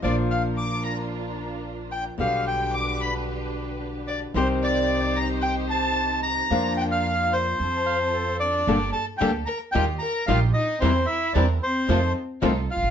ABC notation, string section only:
X:1
M:4/4
L:1/8
Q:1/4=111
K:Bb
V:1 name="String section"
[DFB]8 | [DG=B]8 | [EGc]8 | [DFB]4 [CFA]4 |
[K:Gm] [B,GA] z [B,GA] z [EFG] z [EFG] z | [C=EB] z [CEB] z [_EFA] z [EFA] z |]